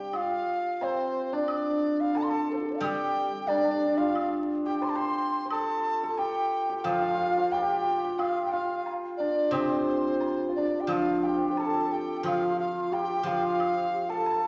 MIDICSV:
0, 0, Header, 1, 6, 480
1, 0, Start_track
1, 0, Tempo, 672646
1, 91, Time_signature, 2, 2, 24, 8
1, 10329, End_track
2, 0, Start_track
2, 0, Title_t, "Dizi"
2, 0, Program_c, 0, 73
2, 0, Note_on_c, 0, 79, 77
2, 117, Note_on_c, 0, 77, 85
2, 127, Note_off_c, 0, 79, 0
2, 595, Note_on_c, 0, 72, 82
2, 606, Note_off_c, 0, 77, 0
2, 953, Note_on_c, 0, 74, 75
2, 964, Note_off_c, 0, 72, 0
2, 1429, Note_on_c, 0, 77, 80
2, 1440, Note_off_c, 0, 74, 0
2, 1551, Note_on_c, 0, 81, 90
2, 1561, Note_off_c, 0, 77, 0
2, 1591, Note_on_c, 0, 84, 80
2, 1602, Note_off_c, 0, 81, 0
2, 1640, Note_on_c, 0, 81, 87
2, 1651, Note_off_c, 0, 84, 0
2, 1784, Note_off_c, 0, 81, 0
2, 1789, Note_on_c, 0, 69, 40
2, 1804, Note_off_c, 0, 69, 0
2, 1808, Note_on_c, 0, 72, 44
2, 1827, Note_off_c, 0, 72, 0
2, 1832, Note_on_c, 0, 62, 45
2, 1854, Note_off_c, 0, 62, 0
2, 1858, Note_on_c, 0, 65, 45
2, 1881, Note_off_c, 0, 65, 0
2, 1886, Note_on_c, 0, 67, 50
2, 1906, Note_off_c, 0, 67, 0
2, 1910, Note_on_c, 0, 69, 53
2, 1925, Note_off_c, 0, 69, 0
2, 1930, Note_on_c, 0, 72, 56
2, 1950, Note_off_c, 0, 72, 0
2, 1954, Note_on_c, 0, 74, 59
2, 1969, Note_off_c, 0, 74, 0
2, 1974, Note_on_c, 0, 77, 63
2, 2003, Note_off_c, 0, 77, 0
2, 2007, Note_on_c, 0, 79, 101
2, 2481, Note_on_c, 0, 74, 96
2, 2492, Note_off_c, 0, 79, 0
2, 2837, Note_on_c, 0, 77, 79
2, 2848, Note_off_c, 0, 74, 0
2, 3126, Note_off_c, 0, 77, 0
2, 3321, Note_on_c, 0, 79, 81
2, 3449, Note_on_c, 0, 84, 88
2, 3459, Note_off_c, 0, 79, 0
2, 3492, Note_on_c, 0, 81, 88
2, 3503, Note_off_c, 0, 84, 0
2, 3544, Note_on_c, 0, 84, 95
2, 3555, Note_off_c, 0, 81, 0
2, 3927, Note_off_c, 0, 84, 0
2, 3931, Note_on_c, 0, 81, 101
2, 4357, Note_off_c, 0, 81, 0
2, 4357, Note_on_c, 0, 81, 55
2, 4409, Note_on_c, 0, 79, 93
2, 4419, Note_off_c, 0, 81, 0
2, 4836, Note_off_c, 0, 79, 0
2, 4840, Note_on_c, 0, 79, 65
2, 4885, Note_on_c, 0, 77, 103
2, 4896, Note_off_c, 0, 79, 0
2, 5366, Note_on_c, 0, 79, 96
2, 5376, Note_off_c, 0, 77, 0
2, 5843, Note_on_c, 0, 77, 84
2, 5854, Note_off_c, 0, 79, 0
2, 6031, Note_off_c, 0, 77, 0
2, 6035, Note_on_c, 0, 79, 58
2, 6081, Note_on_c, 0, 77, 80
2, 6091, Note_off_c, 0, 79, 0
2, 6366, Note_off_c, 0, 77, 0
2, 6546, Note_on_c, 0, 74, 76
2, 6793, Note_on_c, 0, 72, 84
2, 6804, Note_off_c, 0, 74, 0
2, 7523, Note_off_c, 0, 72, 0
2, 7532, Note_on_c, 0, 74, 70
2, 7710, Note_on_c, 0, 79, 52
2, 7721, Note_off_c, 0, 74, 0
2, 7772, Note_on_c, 0, 77, 86
2, 7782, Note_off_c, 0, 79, 0
2, 8017, Note_on_c, 0, 79, 73
2, 8027, Note_off_c, 0, 77, 0
2, 8267, Note_on_c, 0, 81, 94
2, 8278, Note_off_c, 0, 79, 0
2, 8508, Note_on_c, 0, 79, 78
2, 8519, Note_off_c, 0, 81, 0
2, 8745, Note_off_c, 0, 79, 0
2, 8750, Note_on_c, 0, 77, 89
2, 8969, Note_off_c, 0, 77, 0
2, 8988, Note_on_c, 0, 77, 76
2, 9231, Note_on_c, 0, 79, 88
2, 9241, Note_off_c, 0, 77, 0
2, 9467, Note_on_c, 0, 77, 90
2, 9477, Note_off_c, 0, 79, 0
2, 10060, Note_on_c, 0, 81, 84
2, 10071, Note_off_c, 0, 77, 0
2, 10329, Note_off_c, 0, 81, 0
2, 10329, End_track
3, 0, Start_track
3, 0, Title_t, "Xiao"
3, 0, Program_c, 1, 77
3, 7478, Note_on_c, 1, 65, 43
3, 7529, Note_on_c, 1, 62, 62
3, 7539, Note_off_c, 1, 65, 0
3, 7722, Note_on_c, 1, 67, 49
3, 7733, Note_off_c, 1, 62, 0
3, 7778, Note_on_c, 1, 65, 74
3, 7789, Note_off_c, 1, 67, 0
3, 8209, Note_on_c, 1, 72, 51
3, 8220, Note_off_c, 1, 65, 0
3, 8263, Note_on_c, 1, 69, 77
3, 8274, Note_off_c, 1, 72, 0
3, 8494, Note_off_c, 1, 69, 0
3, 8498, Note_on_c, 1, 67, 66
3, 8690, Note_off_c, 1, 67, 0
3, 8690, Note_on_c, 1, 67, 58
3, 8743, Note_on_c, 1, 65, 77
3, 8754, Note_off_c, 1, 67, 0
3, 8971, Note_off_c, 1, 65, 0
3, 8975, Note_on_c, 1, 65, 75
3, 9219, Note_on_c, 1, 67, 75
3, 9230, Note_off_c, 1, 65, 0
3, 9457, Note_on_c, 1, 65, 79
3, 9467, Note_off_c, 1, 67, 0
3, 9935, Note_off_c, 1, 65, 0
3, 9939, Note_on_c, 1, 67, 70
3, 10047, Note_off_c, 1, 67, 0
3, 10051, Note_on_c, 1, 69, 81
3, 10329, Note_off_c, 1, 69, 0
3, 10329, End_track
4, 0, Start_track
4, 0, Title_t, "Hammered dulcimer"
4, 0, Program_c, 2, 15
4, 0, Note_on_c, 2, 67, 57
4, 95, Note_on_c, 2, 65, 57
4, 580, Note_on_c, 2, 60, 64
4, 948, Note_on_c, 2, 62, 68
4, 1536, Note_on_c, 2, 69, 69
4, 1644, Note_off_c, 2, 69, 0
4, 1646, Note_on_c, 2, 69, 82
4, 1951, Note_off_c, 2, 67, 0
4, 2019, Note_on_c, 2, 67, 72
4, 2492, Note_off_c, 2, 62, 0
4, 2495, Note_on_c, 2, 62, 69
4, 2497, Note_off_c, 2, 65, 0
4, 2549, Note_off_c, 2, 62, 0
4, 2552, Note_on_c, 2, 62, 51
4, 2590, Note_off_c, 2, 62, 0
4, 2593, Note_on_c, 2, 62, 58
4, 2642, Note_off_c, 2, 62, 0
4, 2645, Note_on_c, 2, 62, 46
4, 2694, Note_off_c, 2, 62, 0
4, 2697, Note_on_c, 2, 62, 53
4, 2753, Note_off_c, 2, 62, 0
4, 2756, Note_on_c, 2, 62, 42
4, 2837, Note_on_c, 2, 65, 73
4, 3323, Note_off_c, 2, 67, 0
4, 3326, Note_on_c, 2, 67, 73
4, 3435, Note_off_c, 2, 60, 0
4, 3438, Note_on_c, 2, 72, 78
4, 3533, Note_off_c, 2, 72, 0
4, 3535, Note_on_c, 2, 72, 76
4, 3732, Note_off_c, 2, 69, 0
4, 3889, Note_off_c, 2, 72, 0
4, 3891, Note_on_c, 2, 72, 47
4, 3934, Note_on_c, 2, 69, 65
4, 4303, Note_off_c, 2, 69, 0
4, 4306, Note_on_c, 2, 69, 77
4, 4412, Note_off_c, 2, 67, 0
4, 4414, Note_on_c, 2, 67, 67
4, 4775, Note_off_c, 2, 67, 0
4, 4777, Note_on_c, 2, 67, 73
4, 4893, Note_off_c, 2, 65, 0
4, 4895, Note_on_c, 2, 65, 63
4, 4945, Note_off_c, 2, 65, 0
4, 4948, Note_on_c, 2, 65, 46
4, 5002, Note_off_c, 2, 65, 0
4, 5005, Note_on_c, 2, 65, 55
4, 5055, Note_off_c, 2, 65, 0
4, 5058, Note_on_c, 2, 65, 55
4, 5098, Note_off_c, 2, 65, 0
4, 5101, Note_on_c, 2, 65, 60
4, 5160, Note_off_c, 2, 65, 0
4, 5163, Note_on_c, 2, 65, 56
4, 5258, Note_off_c, 2, 65, 0
4, 5261, Note_on_c, 2, 65, 72
4, 5375, Note_off_c, 2, 67, 0
4, 5377, Note_on_c, 2, 67, 72
4, 5416, Note_off_c, 2, 62, 0
4, 5426, Note_off_c, 2, 67, 0
4, 5429, Note_on_c, 2, 67, 51
4, 5479, Note_off_c, 2, 67, 0
4, 5482, Note_on_c, 2, 67, 61
4, 5526, Note_off_c, 2, 67, 0
4, 5529, Note_on_c, 2, 67, 53
4, 5591, Note_off_c, 2, 67, 0
4, 5594, Note_on_c, 2, 67, 52
4, 5637, Note_off_c, 2, 67, 0
4, 5640, Note_on_c, 2, 67, 51
4, 5689, Note_off_c, 2, 67, 0
4, 5692, Note_on_c, 2, 67, 50
4, 5736, Note_off_c, 2, 67, 0
4, 5739, Note_on_c, 2, 67, 52
4, 5775, Note_off_c, 2, 72, 0
4, 5840, Note_off_c, 2, 65, 0
4, 5842, Note_on_c, 2, 65, 66
4, 6086, Note_off_c, 2, 65, 0
4, 6089, Note_on_c, 2, 65, 71
4, 6391, Note_off_c, 2, 69, 0
4, 6563, Note_on_c, 2, 62, 53
4, 6802, Note_on_c, 2, 60, 63
4, 7479, Note_off_c, 2, 65, 0
4, 7482, Note_on_c, 2, 65, 38
4, 7543, Note_off_c, 2, 62, 0
4, 7546, Note_on_c, 2, 62, 53
4, 7786, Note_off_c, 2, 65, 0
4, 7789, Note_on_c, 2, 65, 58
4, 7977, Note_off_c, 2, 67, 0
4, 8025, Note_on_c, 2, 67, 69
4, 8275, Note_on_c, 2, 69, 70
4, 8757, Note_off_c, 2, 65, 0
4, 8759, Note_on_c, 2, 65, 70
4, 9218, Note_off_c, 2, 67, 0
4, 9221, Note_on_c, 2, 67, 67
4, 9417, Note_off_c, 2, 67, 0
4, 9420, Note_on_c, 2, 67, 50
4, 9468, Note_off_c, 2, 65, 0
4, 9471, Note_on_c, 2, 65, 65
4, 9656, Note_off_c, 2, 60, 0
4, 10054, Note_off_c, 2, 69, 0
4, 10057, Note_on_c, 2, 69, 78
4, 10206, Note_off_c, 2, 62, 0
4, 10329, Note_off_c, 2, 65, 0
4, 10329, Note_off_c, 2, 67, 0
4, 10329, Note_off_c, 2, 69, 0
4, 10329, End_track
5, 0, Start_track
5, 0, Title_t, "Guzheng"
5, 0, Program_c, 3, 107
5, 0, Note_on_c, 3, 48, 51
5, 0, Note_on_c, 3, 55, 44
5, 0, Note_on_c, 3, 60, 37
5, 0, Note_on_c, 3, 62, 36
5, 0, Note_on_c, 3, 67, 42
5, 213, Note_off_c, 3, 55, 0
5, 334, Note_off_c, 3, 60, 0
5, 456, Note_off_c, 3, 62, 0
5, 571, Note_off_c, 3, 48, 0
5, 579, Note_off_c, 3, 67, 0
5, 2002, Note_on_c, 3, 55, 59
5, 3436, Note_off_c, 3, 55, 0
5, 4881, Note_on_c, 3, 53, 52
5, 6318, Note_off_c, 3, 53, 0
5, 6785, Note_on_c, 3, 48, 61
5, 7757, Note_on_c, 3, 53, 60
5, 8251, Note_off_c, 3, 48, 0
5, 8720, Note_off_c, 3, 53, 0
5, 8729, Note_on_c, 3, 53, 54
5, 9435, Note_off_c, 3, 53, 0
5, 9444, Note_on_c, 3, 53, 59
5, 10329, Note_off_c, 3, 53, 0
5, 10329, End_track
6, 0, Start_track
6, 0, Title_t, "Drums"
6, 94, Note_on_c, 9, 76, 57
6, 166, Note_off_c, 9, 76, 0
6, 580, Note_on_c, 9, 77, 41
6, 651, Note_off_c, 9, 77, 0
6, 1056, Note_on_c, 9, 76, 64
6, 1127, Note_off_c, 9, 76, 0
6, 1533, Note_on_c, 9, 77, 45
6, 1605, Note_off_c, 9, 77, 0
6, 2011, Note_on_c, 9, 76, 62
6, 2083, Note_off_c, 9, 76, 0
6, 2488, Note_on_c, 9, 77, 40
6, 2559, Note_off_c, 9, 77, 0
6, 2964, Note_on_c, 9, 76, 60
6, 3035, Note_off_c, 9, 76, 0
6, 3443, Note_on_c, 9, 77, 42
6, 3515, Note_off_c, 9, 77, 0
6, 3928, Note_on_c, 9, 76, 66
6, 3999, Note_off_c, 9, 76, 0
6, 4407, Note_on_c, 9, 77, 39
6, 4479, Note_off_c, 9, 77, 0
6, 4888, Note_on_c, 9, 76, 52
6, 4959, Note_off_c, 9, 76, 0
6, 5368, Note_on_c, 9, 77, 39
6, 5440, Note_off_c, 9, 77, 0
6, 5847, Note_on_c, 9, 76, 61
6, 5918, Note_off_c, 9, 76, 0
6, 6322, Note_on_c, 9, 77, 42
6, 6394, Note_off_c, 9, 77, 0
6, 6797, Note_on_c, 9, 76, 67
6, 6868, Note_off_c, 9, 76, 0
6, 7283, Note_on_c, 9, 77, 43
6, 7354, Note_off_c, 9, 77, 0
6, 7769, Note_on_c, 9, 76, 72
6, 7840, Note_off_c, 9, 76, 0
6, 8258, Note_on_c, 9, 77, 45
6, 8330, Note_off_c, 9, 77, 0
6, 8746, Note_on_c, 9, 76, 52
6, 8818, Note_off_c, 9, 76, 0
6, 9226, Note_on_c, 9, 77, 38
6, 9297, Note_off_c, 9, 77, 0
6, 9705, Note_on_c, 9, 76, 62
6, 9776, Note_off_c, 9, 76, 0
6, 10178, Note_on_c, 9, 77, 48
6, 10249, Note_off_c, 9, 77, 0
6, 10329, End_track
0, 0, End_of_file